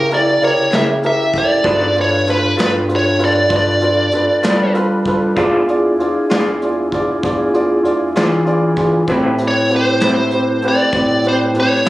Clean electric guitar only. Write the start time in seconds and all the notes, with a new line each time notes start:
0.70 C#3 G3 A#3 E4
1.64 G2 F3 B3 D4
2.57 G2 F3 B3 D4
4.43 G2 F3 B3 D4
5.36 E3 G#3 D4 F4
6.30 E3 G#3 D4 F4
8.16 E3 G#3 D4 F4
9.09 A2 G3 C4 E4
10.01 A2 G3 C4 E4
11.86 E4